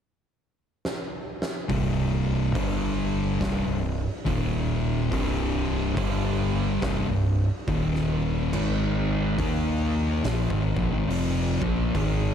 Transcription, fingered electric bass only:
0, 0, Header, 1, 2, 480
1, 0, Start_track
1, 0, Key_signature, -3, "minor"
1, 0, Tempo, 854701
1, 949, Time_signature, 4, 2, 24, 8
1, 6932, End_track
2, 0, Start_track
2, 0, Title_t, "Fingered electric bass"
2, 0, Program_c, 0, 33
2, 953, Note_on_c, 0, 24, 95
2, 1409, Note_off_c, 0, 24, 0
2, 1434, Note_on_c, 0, 31, 101
2, 1890, Note_off_c, 0, 31, 0
2, 1917, Note_on_c, 0, 24, 88
2, 2051, Note_off_c, 0, 24, 0
2, 2060, Note_on_c, 0, 24, 82
2, 2283, Note_off_c, 0, 24, 0
2, 2393, Note_on_c, 0, 27, 91
2, 2850, Note_off_c, 0, 27, 0
2, 2875, Note_on_c, 0, 24, 94
2, 3331, Note_off_c, 0, 24, 0
2, 3354, Note_on_c, 0, 31, 105
2, 3810, Note_off_c, 0, 31, 0
2, 3832, Note_on_c, 0, 24, 92
2, 3968, Note_off_c, 0, 24, 0
2, 3975, Note_on_c, 0, 24, 82
2, 4200, Note_off_c, 0, 24, 0
2, 4312, Note_on_c, 0, 27, 99
2, 4769, Note_off_c, 0, 27, 0
2, 4790, Note_on_c, 0, 32, 97
2, 5248, Note_off_c, 0, 32, 0
2, 5271, Note_on_c, 0, 39, 100
2, 5728, Note_off_c, 0, 39, 0
2, 5752, Note_on_c, 0, 34, 93
2, 5887, Note_off_c, 0, 34, 0
2, 5898, Note_on_c, 0, 32, 97
2, 6034, Note_off_c, 0, 32, 0
2, 6046, Note_on_c, 0, 34, 105
2, 6128, Note_off_c, 0, 34, 0
2, 6131, Note_on_c, 0, 32, 100
2, 6219, Note_off_c, 0, 32, 0
2, 6222, Note_on_c, 0, 29, 100
2, 6498, Note_off_c, 0, 29, 0
2, 6526, Note_on_c, 0, 34, 90
2, 6697, Note_off_c, 0, 34, 0
2, 6709, Note_on_c, 0, 32, 97
2, 6932, Note_off_c, 0, 32, 0
2, 6932, End_track
0, 0, End_of_file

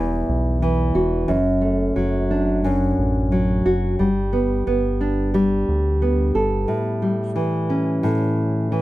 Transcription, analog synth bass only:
0, 0, Header, 1, 2, 480
1, 0, Start_track
1, 0, Key_signature, 2, "major"
1, 0, Tempo, 674916
1, 925, Time_signature, 4, 2, 24, 8
1, 6272, End_track
2, 0, Start_track
2, 0, Title_t, "Analog synth bass"
2, 0, Program_c, 0, 38
2, 0, Note_on_c, 0, 28, 83
2, 174, Note_off_c, 0, 28, 0
2, 206, Note_on_c, 0, 35, 99
2, 657, Note_off_c, 0, 35, 0
2, 676, Note_on_c, 0, 28, 78
2, 901, Note_off_c, 0, 28, 0
2, 919, Note_on_c, 0, 30, 104
2, 1374, Note_off_c, 0, 30, 0
2, 1399, Note_on_c, 0, 30, 93
2, 2094, Note_off_c, 0, 30, 0
2, 2125, Note_on_c, 0, 33, 103
2, 2577, Note_off_c, 0, 33, 0
2, 2602, Note_on_c, 0, 30, 69
2, 2825, Note_off_c, 0, 30, 0
2, 2844, Note_on_c, 0, 31, 99
2, 3297, Note_off_c, 0, 31, 0
2, 3324, Note_on_c, 0, 31, 88
2, 4017, Note_off_c, 0, 31, 0
2, 4043, Note_on_c, 0, 38, 94
2, 4496, Note_off_c, 0, 38, 0
2, 4519, Note_on_c, 0, 31, 94
2, 4743, Note_off_c, 0, 31, 0
2, 6272, End_track
0, 0, End_of_file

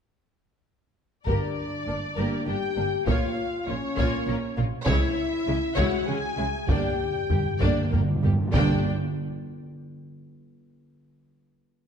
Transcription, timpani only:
0, 0, Header, 1, 2, 480
1, 0, Start_track
1, 0, Tempo, 601805
1, 1016, Time_signature, 3, 2, 24, 8
1, 5339, Tempo, 625000
1, 9317, End_track
2, 0, Start_track
2, 0, Title_t, "Timpani"
2, 0, Program_c, 0, 47
2, 1011, Note_on_c, 0, 43, 52
2, 1699, Note_off_c, 0, 43, 0
2, 5387, Note_on_c, 0, 43, 31
2, 5436, Note_off_c, 0, 43, 0
2, 5445, Note_on_c, 0, 43, 33
2, 5499, Note_off_c, 0, 43, 0
2, 5509, Note_on_c, 0, 43, 35
2, 5556, Note_off_c, 0, 43, 0
2, 5565, Note_on_c, 0, 43, 34
2, 5609, Note_off_c, 0, 43, 0
2, 5618, Note_on_c, 0, 43, 38
2, 5680, Note_off_c, 0, 43, 0
2, 5687, Note_on_c, 0, 43, 42
2, 5737, Note_off_c, 0, 43, 0
2, 5746, Note_on_c, 0, 43, 38
2, 5797, Note_off_c, 0, 43, 0
2, 5806, Note_on_c, 0, 43, 40
2, 5856, Note_off_c, 0, 43, 0
2, 5865, Note_on_c, 0, 43, 48
2, 5911, Note_off_c, 0, 43, 0
2, 5921, Note_on_c, 0, 43, 47
2, 5975, Note_off_c, 0, 43, 0
2, 5984, Note_on_c, 0, 43, 50
2, 6041, Note_off_c, 0, 43, 0
2, 6049, Note_on_c, 0, 43, 56
2, 6094, Note_off_c, 0, 43, 0
2, 6103, Note_on_c, 0, 43, 55
2, 6156, Note_off_c, 0, 43, 0
2, 6165, Note_on_c, 0, 43, 62
2, 6212, Note_off_c, 0, 43, 0
2, 6221, Note_on_c, 0, 43, 58
2, 6275, Note_off_c, 0, 43, 0
2, 6284, Note_on_c, 0, 43, 63
2, 6333, Note_off_c, 0, 43, 0
2, 6342, Note_on_c, 0, 43, 73
2, 6393, Note_off_c, 0, 43, 0
2, 6403, Note_on_c, 0, 43, 74
2, 6448, Note_off_c, 0, 43, 0
2, 6457, Note_on_c, 0, 43, 81
2, 6509, Note_off_c, 0, 43, 0
2, 6519, Note_on_c, 0, 43, 73
2, 6573, Note_off_c, 0, 43, 0
2, 6582, Note_on_c, 0, 43, 88
2, 6627, Note_off_c, 0, 43, 0
2, 6636, Note_on_c, 0, 43, 84
2, 6694, Note_off_c, 0, 43, 0
2, 6704, Note_on_c, 0, 43, 92
2, 6755, Note_off_c, 0, 43, 0
2, 6764, Note_on_c, 0, 43, 89
2, 6989, Note_off_c, 0, 43, 0
2, 9317, End_track
0, 0, End_of_file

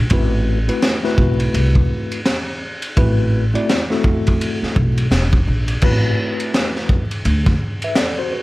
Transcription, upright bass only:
0, 0, Header, 1, 3, 480
1, 0, Start_track
1, 0, Tempo, 714286
1, 75, Time_signature, 4, 2, 24, 8
1, 5662, End_track
2, 0, Start_track
2, 0, Title_t, "Upright bass"
2, 0, Program_c, 0, 32
2, 73, Note_on_c, 0, 33, 98
2, 455, Note_off_c, 0, 33, 0
2, 791, Note_on_c, 0, 35, 79
2, 983, Note_off_c, 0, 35, 0
2, 1035, Note_on_c, 0, 36, 89
2, 1226, Note_off_c, 0, 36, 0
2, 1997, Note_on_c, 0, 33, 89
2, 2378, Note_off_c, 0, 33, 0
2, 3200, Note_on_c, 0, 35, 90
2, 3389, Note_off_c, 0, 35, 0
2, 3433, Note_on_c, 0, 28, 85
2, 3624, Note_off_c, 0, 28, 0
2, 3679, Note_on_c, 0, 34, 81
2, 3868, Note_off_c, 0, 34, 0
2, 3915, Note_on_c, 0, 33, 95
2, 4106, Note_off_c, 0, 33, 0
2, 4874, Note_on_c, 0, 38, 91
2, 5065, Note_off_c, 0, 38, 0
2, 5662, End_track
3, 0, Start_track
3, 0, Title_t, "Muted upright bass strokes"
3, 3106, Note_on_c, 9, 29, 50
3, 3173, Note_off_c, 9, 29, 0
3, 5662, End_track
0, 0, End_of_file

